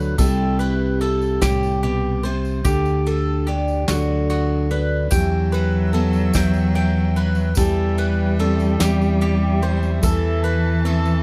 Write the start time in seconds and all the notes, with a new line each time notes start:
Already playing: D2 D3 F#3 D4 F#4 A4 B4
0.18 C2 C3 G3 C4 E4 G4 A4, kick, ride, tambourine
0.59 B4, ride
1.01 A4, ride
1.22 tambourine
1.42 C2 A2 G4, kick, snare, ride, tambourine
1.63 tambourine
1.83 B2 G4, ride
2.23 C3 C5, ride
2.45 tambourine
2.64 D2 D3 G4, kick, ride, tambourine
2.85 tambourine
3.06 A4, ride
3.47 D4 G4, ride
3.68 tambourine
3.88 D2 D3 F#3 D4 F#4 A4, snare, ride, tambourine
4.30 F#4, ride, tambourine
4.71 D4 B4, ride
5.11 E2 E3 F#3 G4 E5 G5 E6, kick, ride, tambourine
5.52 B4, ride
5.93 B3 A4, ride
6.13 tambourine
6.33 E2 B3 G5, kick, snare, ride, tambourine
6.54 tambourine
6.75 G5, ride
7.16 B4, ride
7.35 tambourine
7.55 E2 E3 G3 G4 A4 E5, kick, ride, tambourine
7.98 B4, ride
8.39 C4 A4, ride
8.59 tambourine
8.79 E2 C4 E4 G4, snare, ride, tambourine
9.02 tambourine
9.21 G4, ride
9.61 G3 C5, ride
9.83 tambourine
10.02 E2 E3 A4, kick, ride, tambourine
10.06 A4 A5
10.44 B4, ride
10.84 C4 A4, ride
11.05 tambourine